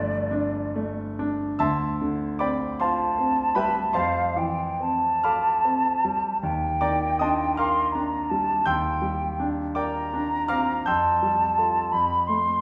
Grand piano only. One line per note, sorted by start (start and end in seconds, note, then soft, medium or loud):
0.00 1.55 G1 medium
0.00 1.55 G2 medium
0.00 0.13 F3 medium
0.00 0.57 A3 medium
0.00 1.13 E4 medium
0.00 1.13 G4 medium
0.00 1.17 B4 medium
0.31 1.00 D4 medium
0.76 1.44 A3 medium
1.19 1.60 D4 medium
1.59 3.91 D2 medium
1.59 2.36 E5 medium
1.59 2.36 A5 medium
1.59 2.36 C6 medium
1.59 2.40 E6 medium
2.02 2.65 D3 medium
2.39 3.03 C4 soft
2.39 2.77 D5 medium
2.39 2.77 G5 medium
2.39 2.77 B5 medium
2.39 2.79 D6 medium
2.80 3.42 F4 soft
2.80 3.53 C5 soft
2.80 3.53 F5 medium
2.80 3.53 A5 medium
2.80 3.56 C6 medium
3.18 3.79 C4 soft
3.55 3.95 G3 medium
3.55 3.92 B4 medium
3.55 3.93 E5 medium
3.55 3.92 G5 medium
3.55 3.95 B5 medium
3.93 6.38 F2 medium
3.93 5.21 C5 medium
3.93 5.21 F5 medium
3.93 5.21 A5 medium
3.93 5.24 C6 medium
4.36 5.08 E3 soft
4.80 5.50 C4 soft
5.24 5.89 A4 soft
5.24 6.38 F5 soft
5.24 6.38 B5 soft
5.24 6.38 D6 medium
5.24 6.42 F6 medium
5.65 6.26 C4 soft
6.05 6.42 G3 medium
6.43 8.62 D#2 medium
6.81 7.42 D#3 soft
6.81 7.17 D5 medium
6.81 7.17 G5 medium
6.81 7.17 A#5 medium
6.81 7.19 D6 medium
7.19 7.79 D4 soft
7.19 7.54 D#5 medium
7.19 7.55 A5 medium
7.19 7.55 C6 medium
7.19 7.56 D#6 medium
7.57 8.16 A#4 soft
7.57 8.63 F5 medium
7.57 8.63 A#5 medium
7.57 8.63 D6 medium
7.57 8.66 F6 medium
7.95 8.52 D4 soft
8.31 8.67 G3 medium
8.66 10.82 D#2 medium
8.66 9.72 G5 medium
8.66 9.72 C6 medium
8.66 9.72 E6 medium
8.66 9.76 G6 medium
9.02 9.61 G3 soft
9.40 9.98 D4 soft
9.75 10.35 A#4 soft
9.75 10.45 D5 soft
9.75 10.46 G5 medium
9.75 10.46 A#5 medium
9.75 10.48 D6 medium
10.14 10.72 D4 soft
10.48 10.86 C4 soft
10.48 10.83 F5 medium
10.48 10.83 A#5 medium
10.48 10.83 D6 medium
10.48 10.86 F6 loud
10.86 11.89 F2 medium
10.86 12.61 G5 medium
10.86 12.61 C6 medium
10.86 12.61 E6 medium
10.86 12.61 G6 medium
11.23 11.78 G3 medium
11.58 11.89 F4 soft
11.58 11.89 A4 soft
11.93 12.61 F2 medium
12.29 12.61 A3 soft